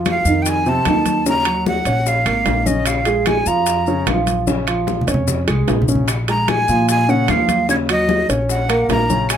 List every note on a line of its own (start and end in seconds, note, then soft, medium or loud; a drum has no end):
0.00 0.20 F2 medium
0.00 0.19 F3 medium
0.00 0.19 F4 medium
0.05 high bongo medium
0.05 high conga medium
0.05 high timbale medium
0.05 low timbale soft
0.05 claves medium
0.05 maracas soft
0.10 0.44 F5 medium
0.25 0.82 F2 medium
0.25 0.59 D#3 medium
0.25 0.60 D#4 medium
0.25 high conga soft
0.25 maracas medium
0.42 0.51 G5 medium
0.42 high conga soft
0.42 maracas medium
0.46 0.70 G#5 medium
0.46 high bongo medium
0.46 high timbale medium
0.65 0.83 C3 medium
0.65 0.83 C4 medium
0.65 1.28 A5 medium
0.65 high bongo soft
0.65 high conga soft
0.65 maracas soft
0.85 1.80 D#2 medium
0.85 1.20 D#3 medium
0.85 1.20 D#4 medium
0.85 high bongo soft
0.85 low bongo medium
0.85 high conga medium
0.85 high timbale medium
0.85 low timbale medium
0.85 claves medium
0.85 maracas soft
1.06 high bongo soft
1.06 high conga medium
1.06 high timbale medium
1.06 maracas medium
1.26 1.43 C#3 medium
1.26 1.43 C#4 medium
1.26 1.65 A#5 loud
1.26 high bongo medium
1.26 high conga soft
1.26 maracas medium
1.45 1.79 F#3 medium
1.45 1.79 F#4 medium
1.45 high bongo soft
1.45 high conga soft
1.45 high timbale loud
1.45 claves medium
1.45 maracas soft
1.66 2.10 F#5 loud
1.66 high bongo medium
1.66 high conga medium
1.66 low timbale soft
1.66 maracas soft
1.85 2.23 A#1 medium
1.85 2.19 C#4 medium
1.85 2.20 C#5 medium
1.85 high conga soft
1.85 high timbale medium
1.85 maracas medium
2.06 2.68 F5 medium
2.06 high bongo medium
2.06 high conga soft
2.06 maracas medium
2.26 2.45 G#1 medium
2.26 2.59 A#3 medium
2.26 2.60 A#4 medium
2.26 high bongo soft
2.26 high conga soft
2.26 high timbale medium
2.26 claves medium
2.26 maracas soft
2.46 3.41 A#1 medium
2.46 high bongo soft
2.46 low bongo medium
2.46 high conga soft
2.46 high timbale medium
2.46 low timbale medium
2.46 maracas soft
2.66 2.99 C#3 medium
2.66 2.99 C#4 medium
2.66 2.88 D#5 medium
2.66 high bongo soft
2.66 high conga medium
2.66 maracas medium
2.86 3.29 F5 medium
2.86 high bongo medium
2.86 high conga soft
2.86 high timbale medium
2.86 claves medium
2.86 maracas medium
3.05 3.39 G#3 medium
3.05 3.40 G#4 medium
3.05 high bongo soft
3.05 high conga soft
3.05 high timbale medium
3.05 maracas soft
3.26 3.49 G#5 medium
3.26 high bongo medium
3.26 high conga medium
3.26 high timbale medium
3.26 low timbale soft
3.26 claves medium
3.26 maracas soft
3.46 4.03 F2 medium
3.46 3.80 F3 medium
3.46 3.80 F4 medium
3.46 4.08 A#5 medium
3.46 high conga soft
3.46 maracas medium
3.66 high bongo medium
3.66 high conga soft
3.66 high timbale medium
3.66 maracas medium
3.86 4.04 C#3 medium
3.86 4.04 C#4 medium
3.86 high bongo soft
3.86 high conga soft
3.86 maracas soft
4.06 5.01 A#1 medium
4.06 4.41 F3 medium
4.06 4.41 F4 medium
4.06 high bongo soft
4.06 low bongo medium
4.06 high conga medium
4.06 high timbale medium
4.06 low timbale medium
4.06 claves medium
4.06 maracas soft
4.27 high bongo soft
4.27 high conga medium
4.27 high timbale medium
4.27 maracas medium
4.47 4.64 C#3 medium
4.47 4.64 C#4 medium
4.47 high bongo medium
4.47 high conga medium
4.47 maracas medium
4.67 5.01 F3 medium
4.67 5.01 F4 medium
4.67 high bongo soft
4.67 high timbale medium
4.67 claves medium
4.67 maracas soft
4.87 high bongo medium
4.87 high conga medium
4.87 low timbale medium
4.87 maracas soft
5.01 low conga medium
5.07 5.45 F2 medium
5.07 5.41 C#4 medium
5.07 5.41 C#5 medium
5.07 high timbale medium
5.07 maracas medium
5.14 low conga loud
5.28 high bongo medium
5.28 low conga medium
5.28 maracas medium
5.47 5.67 C2 medium
5.47 5.81 G#3 medium
5.47 5.81 G#4 medium
5.47 high timbale medium
5.47 claves medium
5.47 maracas soft
5.68 6.63 A#1 medium
5.68 high bongo soft
5.68 low bongo medium
5.68 high timbale medium
5.68 low timbale medium
5.68 maracas soft
5.82 low conga medium
5.88 6.05 C#3 medium
5.88 6.05 C#4 medium
5.88 high bongo soft
5.88 maracas medium
5.95 low conga medium
6.08 high bongo medium
6.08 high conga soft
6.08 high timbale medium
6.08 claves medium
6.08 maracas medium
6.28 6.62 G#3 medium
6.28 6.62 G#4 medium
6.28 6.51 A#5 medium
6.28 high bongo soft
6.28 high conga soft
6.28 high timbale medium
6.28 maracas soft
6.48 6.89 G#5 loud
6.48 high bongo medium
6.48 high conga medium
6.48 high timbale medium
6.48 low timbale medium
6.48 claves medium
6.48 maracas soft
6.68 7.25 A#2 medium
6.68 7.02 F3 medium
6.68 7.02 F4 medium
6.68 high conga soft
6.68 maracas medium
6.89 7.11 G#5 loud
6.89 high bongo medium
6.89 high conga soft
6.89 high timbale medium
6.89 maracas medium
7.09 7.25 C#3 medium
7.09 7.25 C#4 medium
7.09 7.31 F#5 medium
7.09 high bongo soft
7.09 high conga soft
7.09 maracas soft
7.28 8.23 D#2 medium
7.28 7.62 F3 medium
7.28 7.62 F4 medium
7.28 7.69 F5 medium
7.28 high bongo soft
7.28 low bongo medium
7.28 high conga medium
7.28 high timbale medium
7.28 low timbale medium
7.28 claves medium
7.28 maracas soft
7.48 high bongo soft
7.48 high conga medium
7.48 high timbale medium
7.48 maracas medium
7.68 7.86 C#3 medium
7.68 7.86 C#4 medium
7.68 7.76 C#5 medium
7.68 high bongo medium
7.68 high conga soft
7.68 maracas medium
7.89 8.22 F#3 medium
7.89 8.22 F#4 medium
7.89 8.28 D#5 medium
7.89 high bongo soft
7.89 high conga soft
7.89 high timbale loud
7.89 claves medium
7.89 maracas soft
8.09 high bongo medium
8.09 high conga medium
8.09 low timbale medium
8.09 maracas soft
8.29 8.85 A#1 medium
8.29 8.62 C#4 medium
8.29 8.62 C#5 medium
8.29 high conga soft
8.29 high timbale medium
8.29 maracas medium
8.49 8.87 F#5 medium
8.49 high bongo medium
8.49 high conga soft
8.49 maracas medium
8.69 9.02 A#3 medium
8.69 9.02 A#4 medium
8.69 high bongo soft
8.69 high conga soft
8.69 high timbale medium
8.69 claves medium
8.69 maracas soft
8.89 9.37 A#1 medium
8.89 9.28 A#5 medium
8.89 high bongo soft
8.89 low bongo medium
8.89 high conga soft
8.89 high timbale medium
8.89 low timbale medium
8.89 maracas soft
9.10 9.37 C#3 medium
9.10 9.37 C#4 medium
9.10 high bongo soft
9.10 high conga medium
9.10 maracas medium
9.29 9.37 G#5 medium
9.29 high bongo medium
9.29 high conga soft
9.29 high timbale medium
9.29 claves medium
9.29 maracas medium